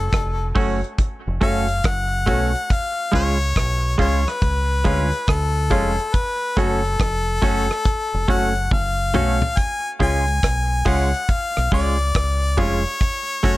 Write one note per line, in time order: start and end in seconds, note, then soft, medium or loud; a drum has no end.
0.00 0.10 F#1 loud
0.00 0.57 A4 medium
0.13 0.53 F1 medium
0.13 kick loud
0.13 cross-stick loud
0.13 closed hi-hat medium
0.55 0.82 F#1 medium
0.55 0.80 A3 medium
0.55 0.80 C#4 loud
0.55 0.75 F#4 medium
0.55 0.80 F#4 loud
0.55 0.75 A4 medium
0.55 0.75 C#5 loud
0.55 kick medium
0.55 open hi-hat medium
0.84 closed hi-hat medium
0.98 kick loud
0.98 closed hi-hat medium
1.27 1.41 F1 medium
1.41 1.82 F#1 medium
1.41 1.65 A3 medium
1.41 1.66 C#4 medium
1.41 1.61 F#4 medium
1.41 1.66 F#4 medium
1.41 1.61 A4 medium
1.41 1.61 C#5 loud
1.41 1.87 F5 loud
1.41 kick medium
1.41 closed hi-hat medium
1.68 closed hi-hat medium
1.84 2.25 F#1 medium
1.84 2.74 F#5 medium
1.84 kick loud
1.84 cross-stick loud
1.84 closed hi-hat medium
2.26 2.53 B1 medium
2.26 2.51 A3 medium
2.26 2.52 C#4 medium
2.26 2.46 F#4 medium
2.26 2.52 F#4 medium
2.26 2.47 A4 medium
2.26 2.47 C#5 loud
2.26 kick medium
2.26 closed hi-hat medium
2.55 closed hi-hat medium
2.70 3.14 F5 medium
2.70 kick loud
2.70 closed hi-hat medium
3.12 3.54 C#2 loud
3.12 3.37 G#3 medium
3.12 3.37 C#4 medium
3.12 3.32 F4 medium
3.12 3.38 F4 medium
3.12 3.33 G#4 medium
3.12 3.33 C#5 medium
3.12 3.96 C#5 loud
3.12 kick medium
3.12 closed hi-hat medium
3.41 closed hi-hat medium
3.56 3.97 B1 medium
3.56 kick loud
3.56 cross-stick loud
3.56 closed hi-hat loud
3.98 4.25 C#2 medium
3.98 4.23 G#3 loud
3.98 4.23 C#4 loud
3.98 4.18 F4 medium
3.98 4.24 F4 loud
3.98 4.18 G#4 medium
3.98 4.19 C#5 medium
3.98 4.30 C#5 medium
3.98 kick medium
3.98 open hi-hat medium
4.28 5.29 B4 medium
4.28 cross-stick medium
4.28 closed hi-hat medium
4.42 4.83 C#2 medium
4.42 kick loud
4.42 closed hi-hat medium
4.84 5.11 D2 medium
4.84 5.09 G#3 medium
4.84 5.10 C#4 medium
4.84 5.04 F4 medium
4.84 5.10 F4 medium
4.84 5.04 G#4 medium
4.84 5.05 C#5 medium
4.84 kick medium
4.84 closed hi-hat medium
5.12 closed hi-hat medium
5.27 5.68 D2 loud
5.27 6.16 A4 medium
5.27 kick loud
5.27 cross-stick loud
5.27 closed hi-hat medium
5.70 5.97 F1 medium
5.70 5.95 G#3 medium
5.70 5.95 C#4 medium
5.70 5.90 F4 loud
5.70 5.96 F4 medium
5.70 5.90 G#4 medium
5.70 5.90 C#5 loud
5.70 kick medium
5.70 closed hi-hat medium
5.99 closed hi-hat soft
6.14 6.60 B4 medium
6.14 kick loud
6.14 closed hi-hat medium
6.57 6.97 F#1 loud
6.57 6.81 A3 medium
6.57 6.81 C#4 medium
6.57 6.76 F#4 medium
6.57 6.82 F#4 loud
6.57 6.76 A4 medium
6.57 8.29 A4 loud
6.57 6.76 C#5 medium
6.57 kick medium
6.57 closed hi-hat medium
6.84 closed hi-hat medium
7.00 7.40 F1 medium
7.00 kick loud
7.00 cross-stick loud
7.00 closed hi-hat medium
7.42 7.69 F#1 medium
7.42 7.66 A3 medium
7.42 7.67 C#4 medium
7.42 7.61 F#4 medium
7.42 7.67 F#4 medium
7.42 7.62 A4 medium
7.42 7.62 C#5 loud
7.42 kick medium
7.42 open hi-hat medium
7.70 cross-stick medium
7.70 closed hi-hat medium
7.85 kick loud
7.85 closed hi-hat medium
8.14 8.28 F1 medium
8.28 8.69 F#1 medium
8.28 8.53 A3 medium
8.28 8.53 C#4 medium
8.28 8.47 F#4 medium
8.28 8.53 F#4 medium
8.28 8.48 A4 medium
8.28 8.48 C#5 medium
8.28 8.69 F#5 loud
8.28 kick medium
8.28 open hi-hat medium
8.55 closed hi-hat soft
8.71 9.12 F#1 medium
8.71 9.60 F5 medium
8.71 kick loud
8.71 high tom medium
9.13 9.41 B1 medium
9.13 9.38 A3 medium
9.13 9.39 C#4 medium
9.13 9.33 F#4 medium
9.13 9.39 F#4 medium
9.13 9.33 A4 medium
9.13 9.34 C#5 loud
9.13 mid tom medium
9.42 floor tom medium
9.57 9.89 G#5 loud
9.57 kick loud
9.57 closed hi-hat medium
10.00 10.41 C#2 loud
10.00 10.24 G#3 medium
10.00 10.25 C#4 medium
10.00 10.19 F4 medium
10.00 10.25 F4 medium
10.00 10.19 G#4 medium
10.00 10.20 C#5 medium
10.00 10.89 G#5 loud
10.00 kick medium
10.00 open hi-hat soft
10.28 closed hi-hat medium
10.43 10.84 B1 medium
10.43 kick loud
10.43 cross-stick loud
10.43 closed hi-hat medium
10.85 11.12 C#2 medium
10.85 11.10 G#3 medium
10.85 11.11 C#4 medium
10.85 11.05 F4 medium
10.85 11.11 F4 medium
10.85 11.05 G#4 medium
10.85 11.05 C#5 medium
10.85 11.32 F#5 loud
10.85 kick medium
10.85 open hi-hat medium
11.14 closed hi-hat medium
11.29 11.73 F5 loud
11.29 kick loud
11.29 closed hi-hat medium
11.57 11.72 B1 medium
11.57 cross-stick medium
11.71 12.12 C#2 medium
11.71 11.96 G#3 medium
11.71 11.97 C#4 medium
11.71 11.91 F4 medium
11.71 11.97 F4 medium
11.71 11.91 G#4 medium
11.71 11.91 C#5 loud
11.71 12.61 D5 loud
11.71 kick loud
11.71 open hi-hat medium
11.99 closed hi-hat soft
12.15 12.55 C#2 medium
12.15 kick loud
12.15 cross-stick loud
12.15 closed hi-hat medium
12.57 12.84 F1 medium
12.57 12.82 G#3 medium
12.57 12.82 C#4 medium
12.57 12.77 F4 loud
12.57 12.83 F4 medium
12.57 12.77 G#4 medium
12.57 12.77 C#5 loud
12.57 13.57 C#5 loud
12.57 kick medium
12.57 closed hi-hat medium
12.85 closed hi-hat soft
13.01 kick loud
13.01 closed hi-hat medium
13.43 13.57 F#1 medium
13.43 13.57 A3 medium
13.43 13.57 C#4 medium
13.43 13.57 F#4 medium
13.43 13.57 F#4 loud
13.43 13.57 A4 medium
13.43 13.57 C#5 loud
13.43 kick medium
13.43 closed hi-hat medium